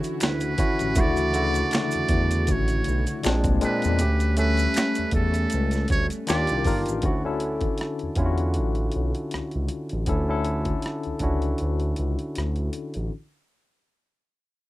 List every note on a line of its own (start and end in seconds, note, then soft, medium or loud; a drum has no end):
0.00 3.20 E3 medium
0.00 0.59 C#4 medium
0.00 0.98 D4 medium
0.00 0.59 E4 medium
0.00 3.20 E4 medium
0.00 0.60 F#4 medium
0.00 3.20 F#4 medium
0.00 maracas soft
0.04 closed hi-hat soft
0.20 0.54 D2 medium
0.20 finger snap medium
0.20 snare loud
0.20 closed hi-hat medium
0.20 maracas medium
0.23 1.02 B4 medium
0.23 finger snap medium
0.41 closed hi-hat medium
0.41 maracas soft
0.58 0.91 D3 medium
0.58 0.92 C#4 medium
0.58 0.92 E4 medium
0.58 0.92 F#4 medium
0.58 kick loud
0.58 closed hi-hat medium
0.58 maracas soft
0.79 0.99 A1 medium
0.79 closed hi-hat soft
0.79 maracas soft
0.95 1.63 D2 loud
0.95 1.30 C#3 medium
0.95 1.29 D3 medium
0.95 1.29 A3 medium
0.95 3.22 A3 medium
0.95 1.30 E4 medium
0.95 1.30 F#4 medium
0.95 kick loud
0.95 closed hi-hat medium
0.95 maracas medium
1.00 1.74 D5 loud
1.17 closed hi-hat soft
1.17 maracas soft
1.33 2.67 C#3 medium
1.33 2.66 D3 medium
1.33 2.67 A3 medium
1.33 2.67 E4 medium
1.33 2.67 F#4 medium
1.33 closed hi-hat medium
1.33 maracas medium
1.54 closed hi-hat soft
1.54 maracas medium
1.71 finger snap medium
1.71 snare loud
1.71 closed hi-hat medium
1.71 maracas medium
1.75 2.53 D5 loud
1.75 finger snap medium
1.91 closed hi-hat soft
1.91 maracas soft
1.95 2.01 E2 soft
2.09 2.51 E2 medium
2.09 kick medium
2.09 closed hi-hat medium
2.31 closed hi-hat soft
2.31 maracas soft
2.47 2.82 A1 loud
2.47 kick medium
2.47 closed hi-hat medium
2.47 maracas medium
2.52 3.26 C#5 medium
2.68 closed hi-hat soft
2.68 maracas soft
2.84 3.05 B1 medium
2.84 closed hi-hat medium
2.88 maracas soft
3.07 closed hi-hat soft
3.07 maracas soft
3.23 3.43 A#1 loud
3.23 3.57 A#2 medium
3.23 3.57 G#3 medium
3.23 3.99 G#3 medium
3.23 3.99 A#3 medium
3.23 3.57 C4 medium
3.23 3.99 D4 medium
3.23 3.58 D4 medium
3.23 finger snap medium
3.23 snare loud
3.23 closed hi-hat medium
3.23 maracas medium
3.27 finger snap medium
3.44 3.60 C2 medium
3.44 kick loud
3.44 closed hi-hat soft
3.44 maracas soft
3.61 3.95 A#2 medium
3.61 3.95 G#3 medium
3.61 3.95 C4 medium
3.61 3.96 D4 medium
3.61 4.35 B4 medium
3.61 closed hi-hat medium
3.61 maracas soft
3.82 4.04 E2 medium
3.82 closed hi-hat soft
3.82 maracas medium
3.99 4.67 D2 medium
3.99 6.25 G3 medium
3.99 4.33 A3 medium
3.99 6.25 A3 medium
3.99 6.25 C#4 medium
3.99 4.33 C#4 medium
3.99 4.34 G4 medium
3.99 closed hi-hat medium
3.99 maracas medium
4.20 closed hi-hat soft
4.20 maracas soft
4.37 5.70 A3 medium
4.37 5.71 C#4 medium
4.37 5.71 A4 medium
4.37 5.10 B4 loud
4.37 closed hi-hat medium
4.37 maracas soft
4.57 closed hi-hat soft
4.57 maracas medium
4.74 finger snap medium
4.74 snare loud
4.74 closed hi-hat medium
4.74 maracas medium
4.95 5.05 E2 soft
4.95 closed hi-hat soft
4.95 maracas soft
5.11 5.47 E2 medium
5.11 5.86 A4 medium
5.11 kick medium
5.11 closed hi-hat medium
5.34 closed hi-hat soft
5.34 maracas soft
5.50 closed hi-hat medium
5.50 maracas medium
5.54 5.86 C#2 loud
5.71 closed hi-hat soft
5.71 maracas soft
5.75 snare soft
5.88 6.09 D2 medium
5.88 6.07 C#5 loud
5.88 kick medium
5.88 closed hi-hat medium
5.92 maracas soft
6.10 closed hi-hat soft
6.10 maracas soft
6.27 6.47 D#2 loud
6.27 6.61 D#3 medium
6.27 7.03 D#3 medium
6.27 6.61 D4 medium
6.27 7.03 D4 medium
6.27 7.03 F4 medium
6.27 6.61 F4 medium
6.27 7.03 G4 medium
6.27 6.62 G4 medium
6.27 6.83 D5 loud
6.27 finger snap medium
6.27 snare loud
6.27 closed hi-hat medium
6.27 maracas medium
6.30 finger snap medium
6.47 6.65 C2 loud
6.47 closed hi-hat soft
6.47 maracas soft
6.64 6.84 G1 medium
6.64 6.99 D#3 medium
6.64 6.99 D4 medium
6.64 6.99 F4 medium
6.64 7.00 A#4 medium
6.64 kick loud
6.64 open hi-hat medium
6.64 maracas soft
6.86 7.03 A1 medium
6.86 closed hi-hat soft
6.86 maracas soft
7.02 7.70 D2 loud
7.02 7.22 D3 medium
7.02 7.22 C#4 medium
7.02 7.22 E4 medium
7.02 7.23 F#4 medium
7.02 kick loud
7.02 closed hi-hat medium
7.24 8.06 D3 medium
7.24 8.06 C#4 medium
7.24 8.06 E4 medium
7.24 8.07 A4 medium
7.40 closed hi-hat medium
7.61 kick medium
7.61 closed hi-hat soft
7.78 cross-stick loud
7.78 closed hi-hat medium
7.99 8.09 E2 soft
7.99 closed hi-hat soft
8.15 8.60 E2 medium
8.15 9.50 D3 medium
8.15 9.50 C#4 medium
8.15 9.51 E4 medium
8.15 8.25 F4 medium
8.15 kick medium
8.15 closed hi-hat medium
8.26 9.54 F#4 medium
8.38 closed hi-hat soft
8.54 closed hi-hat medium
8.58 8.90 A1 medium
8.75 closed hi-hat soft
8.92 closed hi-hat medium
8.96 9.13 B1 medium
9.15 closed hi-hat soft
9.31 9.42 C#2 soft
9.31 cross-stick loud
9.31 closed hi-hat medium
9.51 closed hi-hat soft
9.56 9.69 C#2 medium
9.69 closed hi-hat medium
9.89 10.06 A1 medium
9.89 closed hi-hat soft
10.06 10.74 D2 medium
10.06 10.25 D3 medium
10.06 10.26 C#4 medium
10.06 10.26 E4 medium
10.06 10.26 A4 medium
10.06 kick medium
10.06 closed hi-hat medium
10.28 11.10 D3 medium
10.28 11.10 C#4 medium
10.28 11.10 E4 medium
10.28 11.11 A4 medium
10.45 closed hi-hat medium
10.65 kick medium
10.65 closed hi-hat soft
10.82 cross-stick medium
10.82 closed hi-hat medium
11.03 11.13 C#2 soft
11.03 closed hi-hat soft
11.19 11.54 C#2 medium
11.19 12.54 C#4 medium
11.19 12.54 D4 medium
11.19 12.55 E4 medium
11.19 kick medium
11.19 closed hi-hat medium
11.23 12.55 F#4 medium
11.42 closed hi-hat soft
11.58 11.94 D2 medium
11.58 closed hi-hat soft
11.80 closed hi-hat soft
11.96 12.17 C#2 medium
11.96 closed hi-hat medium
12.19 closed hi-hat soft
12.35 12.70 D2 medium
12.35 cross-stick medium
12.35 closed hi-hat medium
12.56 closed hi-hat soft
12.73 closed hi-hat medium
12.94 13.10 A1 medium
12.94 closed hi-hat soft